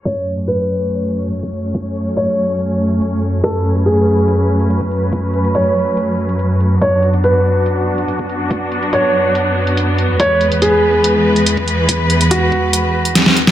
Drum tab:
HH |x-xxx---x--xx-x-|x-xxx---x--xx-x-|x-xxx---x--xx-x-|x-xxx---x--xx-x-|
SD |----------------|----------------|----------------|----------------|
BD |o------------o--|o---------------|o------------o--|o---------------|

HH |x-xxx---x--xx-x-|x-xxx---x--xx-x-|x-xxx---x--xx-x-|x-xxx---x--xx-x-|
SD |----------------|----------------|----------------|------------oo-o|
BD |o------------o--|o---------------|o------------o--|o-----o---------|